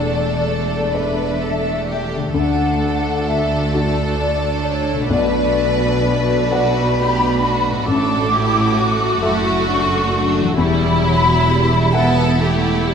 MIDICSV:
0, 0, Header, 1, 9, 480
1, 0, Start_track
1, 0, Tempo, 928793
1, 1211, Time_signature, 6, 3, 24, 8
1, 3606, Tempo, 899550
1, 5526, Tempo, 918836
1, 6762, End_track
2, 0, Start_track
2, 0, Title_t, "Flute section"
2, 0, Program_c, 0, 73
2, 0, Note_on_c, 0, 74, 62
2, 237, Note_off_c, 0, 74, 0
2, 243, Note_on_c, 0, 74, 55
2, 481, Note_off_c, 0, 74, 0
2, 487, Note_on_c, 0, 76, 67
2, 1083, Note_off_c, 0, 76, 0
2, 1212, Note_on_c, 0, 78, 71
2, 1684, Note_off_c, 0, 78, 0
2, 1696, Note_on_c, 0, 76, 58
2, 1931, Note_off_c, 0, 76, 0
2, 1937, Note_on_c, 0, 74, 63
2, 2401, Note_on_c, 0, 73, 65
2, 2403, Note_off_c, 0, 74, 0
2, 2637, Note_off_c, 0, 73, 0
2, 2640, Note_on_c, 0, 74, 67
2, 3117, Note_off_c, 0, 74, 0
2, 3130, Note_on_c, 0, 74, 66
2, 3367, Note_off_c, 0, 74, 0
2, 3368, Note_on_c, 0, 83, 85
2, 4079, Note_on_c, 0, 86, 96
2, 4085, Note_off_c, 0, 83, 0
2, 4785, Note_off_c, 0, 86, 0
2, 4806, Note_on_c, 0, 85, 91
2, 5387, Note_off_c, 0, 85, 0
2, 5525, Note_on_c, 0, 83, 96
2, 6228, Note_off_c, 0, 83, 0
2, 6235, Note_on_c, 0, 78, 77
2, 6479, Note_off_c, 0, 78, 0
2, 6762, End_track
3, 0, Start_track
3, 0, Title_t, "Grand piano"
3, 0, Program_c, 1, 0
3, 0, Control_c, 1, 64, 127
3, 0, Note_on_c, 1, 40, 44
3, 489, Note_on_c, 1, 69, 35
3, 490, Note_on_c, 1, 74, 37
3, 1190, Note_off_c, 1, 69, 0
3, 1191, Note_off_c, 1, 40, 0
3, 1191, Note_off_c, 1, 74, 0
3, 1209, Note_on_c, 1, 38, 44
3, 1219, Control_c, 1, 64, 0
3, 1313, Control_c, 1, 64, 127
3, 1932, Note_on_c, 1, 66, 37
3, 1933, Note_on_c, 1, 62, 40
3, 2614, Note_off_c, 1, 38, 0
3, 2616, Note_off_c, 1, 66, 0
3, 2617, Note_off_c, 1, 62, 0
3, 2635, Note_on_c, 1, 35, 48
3, 2644, Control_c, 1, 64, 0
3, 2734, Control_c, 1, 64, 127
3, 3370, Note_on_c, 1, 78, 41
3, 3372, Note_on_c, 1, 74, 46
3, 4064, Note_off_c, 1, 35, 0
3, 4065, Note_off_c, 1, 78, 0
3, 4066, Note_off_c, 1, 74, 0
3, 4086, Note_on_c, 1, 33, 55
3, 4094, Control_c, 1, 64, 0
3, 4176, Control_c, 1, 64, 127
3, 4782, Note_off_c, 1, 33, 0
3, 4803, Note_on_c, 1, 69, 45
3, 4806, Note_on_c, 1, 76, 52
3, 5503, Note_off_c, 1, 69, 0
3, 5504, Note_off_c, 1, 76, 0
3, 5526, Note_on_c, 1, 40, 61
3, 5534, Control_c, 1, 64, 0
3, 5617, Control_c, 1, 64, 127
3, 6241, Note_on_c, 1, 78, 49
3, 6244, Note_on_c, 1, 76, 56
3, 6762, Note_off_c, 1, 40, 0
3, 6762, Note_off_c, 1, 76, 0
3, 6762, Note_off_c, 1, 78, 0
3, 6762, End_track
4, 0, Start_track
4, 0, Title_t, "Violin section"
4, 0, Program_c, 2, 48
4, 0, Note_on_c, 2, 69, 53
4, 487, Note_on_c, 2, 71, 49
4, 489, Note_off_c, 2, 69, 0
4, 724, Note_on_c, 2, 69, 47
4, 728, Note_off_c, 2, 71, 0
4, 966, Note_off_c, 2, 69, 0
4, 971, Note_on_c, 2, 67, 49
4, 1207, Note_off_c, 2, 67, 0
4, 1209, Note_on_c, 2, 69, 61
4, 2614, Note_off_c, 2, 69, 0
4, 2640, Note_on_c, 2, 71, 63
4, 3371, Note_off_c, 2, 71, 0
4, 3371, Note_on_c, 2, 66, 59
4, 3607, Note_off_c, 2, 66, 0
4, 3607, Note_on_c, 2, 67, 61
4, 3842, Note_off_c, 2, 67, 0
4, 3846, Note_on_c, 2, 66, 54
4, 4081, Note_off_c, 2, 66, 0
4, 4083, Note_on_c, 2, 69, 64
4, 4323, Note_off_c, 2, 69, 0
4, 4323, Note_on_c, 2, 67, 61
4, 4563, Note_off_c, 2, 67, 0
4, 4564, Note_on_c, 2, 66, 66
4, 5521, Note_on_c, 2, 64, 73
4, 5525, Note_off_c, 2, 66, 0
4, 6240, Note_on_c, 2, 69, 77
4, 6241, Note_off_c, 2, 64, 0
4, 6477, Note_off_c, 2, 69, 0
4, 6486, Note_on_c, 2, 67, 63
4, 6721, Note_on_c, 2, 64, 67
4, 6725, Note_off_c, 2, 67, 0
4, 6762, Note_off_c, 2, 64, 0
4, 6762, End_track
5, 0, Start_track
5, 0, Title_t, "Violin section"
5, 0, Program_c, 3, 48
5, 0, Note_on_c, 3, 69, 42
5, 1188, Note_off_c, 3, 69, 0
5, 1211, Note_on_c, 3, 69, 47
5, 2615, Note_off_c, 3, 69, 0
5, 2634, Note_on_c, 3, 71, 53
5, 4085, Note_off_c, 3, 71, 0
5, 4085, Note_on_c, 3, 66, 55
5, 4782, Note_off_c, 3, 66, 0
5, 4804, Note_on_c, 3, 64, 64
5, 5044, Note_off_c, 3, 64, 0
5, 5045, Note_on_c, 3, 62, 59
5, 5275, Note_off_c, 3, 62, 0
5, 5281, Note_on_c, 3, 62, 65
5, 5518, Note_off_c, 3, 62, 0
5, 5526, Note_on_c, 3, 64, 65
5, 6762, Note_off_c, 3, 64, 0
5, 6762, End_track
6, 0, Start_track
6, 0, Title_t, "Viola section"
6, 0, Program_c, 4, 48
6, 0, Note_on_c, 4, 57, 44
6, 0, Note_on_c, 4, 62, 43
6, 1189, Note_off_c, 4, 57, 0
6, 1190, Note_off_c, 4, 62, 0
6, 1212, Note_on_c, 4, 57, 47
6, 1213, Note_on_c, 4, 62, 47
6, 4065, Note_off_c, 4, 57, 0
6, 4066, Note_off_c, 4, 62, 0
6, 4084, Note_on_c, 4, 62, 58
6, 4086, Note_on_c, 4, 57, 61
6, 4307, Note_off_c, 4, 62, 0
6, 4323, Note_on_c, 4, 64, 64
6, 4563, Note_off_c, 4, 64, 0
6, 4565, Note_on_c, 4, 66, 58
6, 5503, Note_off_c, 4, 57, 0
6, 5524, Note_on_c, 4, 64, 67
6, 5525, Note_off_c, 4, 66, 0
6, 5525, Note_on_c, 4, 55, 68
6, 5758, Note_off_c, 4, 55, 0
6, 5762, Note_on_c, 4, 54, 67
6, 6001, Note_on_c, 4, 55, 64
6, 6002, Note_off_c, 4, 54, 0
6, 6228, Note_off_c, 4, 64, 0
6, 6240, Note_on_c, 4, 59, 67
6, 6240, Note_on_c, 4, 64, 63
6, 6242, Note_off_c, 4, 55, 0
6, 6477, Note_off_c, 4, 59, 0
6, 6481, Note_on_c, 4, 57, 70
6, 6716, Note_on_c, 4, 55, 69
6, 6718, Note_off_c, 4, 57, 0
6, 6762, Note_off_c, 4, 55, 0
6, 6762, Note_off_c, 4, 64, 0
6, 6762, End_track
7, 0, Start_track
7, 0, Title_t, "Harp"
7, 0, Program_c, 5, 46
7, 0, Note_on_c, 5, 52, 40
7, 0, Note_on_c, 5, 57, 33
7, 0, Note_on_c, 5, 69, 33
7, 1118, Note_on_c, 5, 50, 43
7, 1136, Note_off_c, 5, 57, 0
7, 1142, Note_on_c, 5, 57, 37
7, 1183, Note_off_c, 5, 52, 0
7, 1734, Note_off_c, 5, 69, 0
7, 2546, Note_on_c, 5, 47, 47
7, 2570, Note_on_c, 5, 62, 40
7, 2593, Note_on_c, 5, 78, 40
7, 2608, Note_off_c, 5, 50, 0
7, 2616, Note_on_c, 5, 74, 40
7, 2621, Note_off_c, 5, 57, 0
7, 3996, Note_on_c, 5, 45, 50
7, 4019, Note_on_c, 5, 57, 44
7, 4043, Note_on_c, 5, 69, 44
7, 4059, Note_off_c, 5, 47, 0
7, 4068, Note_on_c, 5, 76, 44
7, 4083, Note_off_c, 5, 78, 0
7, 4617, Note_off_c, 5, 62, 0
7, 4665, Note_off_c, 5, 74, 0
7, 5433, Note_on_c, 5, 40, 57
7, 5456, Note_on_c, 5, 55, 48
7, 5480, Note_on_c, 5, 64, 47
7, 5498, Note_off_c, 5, 76, 0
7, 5499, Note_off_c, 5, 45, 0
7, 5504, Note_on_c, 5, 76, 47
7, 5510, Note_off_c, 5, 57, 0
7, 5522, Note_off_c, 5, 69, 0
7, 6762, Note_off_c, 5, 40, 0
7, 6762, Note_off_c, 5, 55, 0
7, 6762, Note_off_c, 5, 64, 0
7, 6762, Note_off_c, 5, 76, 0
7, 6762, End_track
8, 0, Start_track
8, 0, Title_t, "Cello section"
8, 0, Program_c, 6, 48
8, 0, Note_on_c, 6, 40, 49
8, 1189, Note_off_c, 6, 40, 0
8, 1213, Note_on_c, 6, 38, 47
8, 2637, Note_off_c, 6, 38, 0
8, 2638, Note_on_c, 6, 47, 56
8, 4066, Note_off_c, 6, 47, 0
8, 4090, Note_on_c, 6, 45, 61
8, 4784, Note_off_c, 6, 45, 0
8, 4806, Note_on_c, 6, 42, 58
8, 5511, Note_off_c, 6, 42, 0
8, 5524, Note_on_c, 6, 40, 67
8, 6762, Note_off_c, 6, 40, 0
8, 6762, End_track
9, 0, Start_track
9, 0, Title_t, "Double bass section"
9, 0, Program_c, 7, 48
9, 0, Note_on_c, 7, 28, 48
9, 1190, Note_off_c, 7, 28, 0
9, 1211, Note_on_c, 7, 38, 51
9, 2634, Note_on_c, 7, 35, 52
9, 2636, Note_off_c, 7, 38, 0
9, 4064, Note_off_c, 7, 35, 0
9, 4089, Note_on_c, 7, 33, 61
9, 4783, Note_off_c, 7, 33, 0
9, 4806, Note_on_c, 7, 30, 56
9, 5511, Note_off_c, 7, 30, 0
9, 5525, Note_on_c, 7, 28, 68
9, 6762, Note_off_c, 7, 28, 0
9, 6762, End_track
0, 0, End_of_file